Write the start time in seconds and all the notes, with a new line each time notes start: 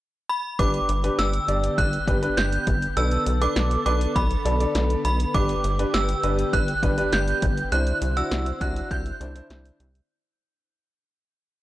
0.29 B5
0.59 G1 D3 B3 D4 G4 B4 D6, kick, closed hi-hat
0.74 closed hi-hat
0.89 G1, closed hi-hat
1.04 D4 G4 B4, closed hi-hat
1.19 G1 E6, snare, closed hi-hat
1.33 closed hi-hat
1.48 G1 D4 G4 D5, closed hi-hat
1.64 closed hi-hat
1.78 G1 F#6, kick, closed hi-hat
1.93 closed hi-hat
2.08 G1 D4 G4 B4, kick, closed hi-hat
2.22 D4 G4 B4, closed hi-hat
2.37 G1 G6, snare, closed hi-hat
2.53 closed hi-hat
2.67 G1, kick, closed hi-hat
2.82 closed hi-hat
2.97 B1 D3 D4 A4 B4 E6, closed hi-hat
3.11 closed hi-hat
3.26 B1, closed hi-hat
3.41 D4 A4 B4 D6, closed hi-hat
3.56 B1, snare, closed hi-hat
3.71 closed hi-hat
3.86 B1 D4 A4 B4 D6, closed hi-hat
4.01 closed hi-hat
4.16 B1 B5, kick, closed hi-hat
4.31 closed hi-hat
4.45 B1 D4 A4 D5, closed hi-hat
4.60 D4 A4 D5, closed hi-hat
4.75 B1, snare, closed hi-hat
4.90 closed hi-hat
5.05 B1 B5, closed hi-hat
5.20 closed hi-hat
5.34 G1 D4 G4 B4 D6, kick, closed hi-hat
5.49 closed hi-hat
5.64 G1, closed hi-hat
5.79 D4 G4 B4, closed hi-hat
5.94 G1 E6, snare, closed hi-hat
6.09 closed hi-hat
6.23 G1 D4 G4 B4, closed hi-hat
6.39 closed hi-hat
6.53 G1 F#6, kick, closed hi-hat
6.68 closed hi-hat
6.83 G1 D4 G4 B4, kick, closed hi-hat
6.98 D4 G4 B4, closed hi-hat
7.13 G1 G6, snare, closed hi-hat
7.28 closed hi-hat
7.42 G1, kick, closed hi-hat
7.57 closed hi-hat
7.72 C2 C4 D4 E4 C5 F#6, closed hi-hat
7.87 closed hi-hat
8.02 C2, closed hi-hat
8.17 D4 E4 F#4 E6, closed hi-hat
8.31 C2, snare, closed hi-hat
8.46 closed hi-hat
8.61 C2 D4 E4 F#4 F#6, kick, closed hi-hat
8.76 closed hi-hat
8.91 C2 G6, kick, closed hi-hat
9.06 closed hi-hat
9.21 C2 D4 E4 C5, closed hi-hat
9.35 D4 E4 C5, closed hi-hat
9.50 C2, snare, closed hi-hat
9.65 closed hi-hat
9.80 C2, closed hi-hat
9.95 closed hi-hat